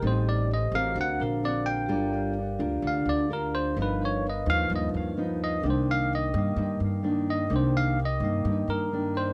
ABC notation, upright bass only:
X:1
M:4/4
L:1/8
Q:1/4=128
K:Cm
V:1 name="Upright bass" clef=bass
=A,,,3 A,,, D,, ^A,,,3 | G,,,3 D,, D,, D,,3 | G,,,3 ^D,, D,, D,,3 | C,,3 G,, G,, G,,3 |
C,,3 G,, G,, G,,3 |]